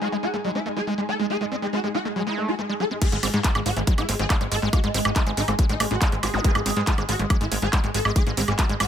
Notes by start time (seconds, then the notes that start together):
Already playing: G#3 D#4 G#4 G#5
0.02 G#3 F#4
0.12 G#3
0.23 G#3 F#4
0.34 G#3 A3
0.44 F#3 G#3
0.55 G#3 E4
0.66 G#3 A3
0.77 G#3 G#4
0.87 G#3
0.98 G#3
1.09 G#3 A4
1.19 G#3
1.30 G#3 G#4
1.41 G#3
1.52 G#3 C4
1.62 G#3
1.73 G#3 F#4
1.84 G#3
1.94 G#3 F#4
2.05 G#3 A3
2.16 F#3 G#3
2.27 G#3 E4
2.37 G#3 A3
2.48 G#3 F#4
2.59 G#3 A3
2.69 G#3
2.80 F#3 A4
2.91 G#3
3.02 G#3 G#4, kick, closed hi-hat, crash
3.12 G#1 G#3, closed hi-hat
3.23 G#1 G#3 C4, open hi-hat, high woodblock
3.34 G#2 G#3, closed hi-hat
3.44 G#3 F#4, kick, clap, closed hi-hat
3.55 G#1 G#3, closed hi-hat, high woodblock
3.66 G#1 G#3 F#4, open hi-hat
3.77 G#1 G#3 A3, closed hi-hat
3.87 F#3 G#3, kick, closed hi-hat
3.98 G#1 G#3 E4, closed hi-hat, high woodblock
4.09 G#1 G#3 A3 C4, open hi-hat
4.19 G#1 G#3 C4 G#4, closed hi-hat
4.30 G#3, kick, clap, closed hi-hat, high woodblock
4.41 G#1 G#3, closed hi-hat
4.51 G#1 G#3 A4, open hi-hat
4.62 G#1 G#3
4.73 G#3 F#4, kick, closed hi-hat, high woodblock
4.84 G#1 G#3, closed hi-hat
4.94 G#1 G#3 C4, open hi-hat
5.05 G#1 G#3 D#4, closed hi-hat, high woodblock
5.16 G#3 D#4 E4, kick, clap, closed hi-hat
5.27 G#1 G#3, closed hi-hat
5.37 G#1 G#3 C4 D#4, open hi-hat
5.48 G#1 G#3 A3 C4, closed hi-hat, high woodblock
5.59 F#3 G#3, kick, closed hi-hat
5.69 A1 G#3 D#4, closed hi-hat
5.80 A1 G#3 A3, open hi-hat, high woodblock
5.91 A1 G#3 F#4, closed hi-hat
6.02 G#3, kick, clap, closed hi-hat
6.12 G#1 G#3, closed hi-hat
6.23 G#1 G#3 F#4 G#4, open hi-hat, high woodblock
6.34 G#1 G#3 F#4, zap
6.44 G#3 G#4, kick, closed hi-hat
6.55 G#1 G#3, closed hi-hat, high woodblock
6.66 G#1 G#3 C4, open hi-hat
6.77 G#2 G#3, closed hi-hat
6.87 G#3 F#4, kick, clap, closed hi-hat
6.98 G#1 G#3, closed hi-hat, high woodblock
7.09 G#1 G#3 F#4, open hi-hat
7.19 G#1 G#3 A3, closed hi-hat
7.30 F#3 G#3, kick, closed hi-hat, high woodblock
7.41 G#1 G#3 E4, closed hi-hat
7.52 G#1 G#3 A3, open hi-hat
7.62 G#1 G#3 G#4, closed hi-hat
7.73 G#3, kick, clap, closed hi-hat, high woodblock
7.84 G#1 G#3, closed hi-hat
7.94 G#1 G#3 A4, open hi-hat
8.05 G#1 G#3, high woodblock
8.16 G#3 G#4, kick, closed hi-hat
8.27 G#1 G#3, closed hi-hat
8.37 G#1 G#3 C4, open hi-hat
8.48 G#1 G#3, closed hi-hat, high woodblock
8.59 G#3 F#4, kick, clap, closed hi-hat
8.69 G#1 G#3, closed hi-hat
8.80 G#1 G#3 F#4, open hi-hat, high woodblock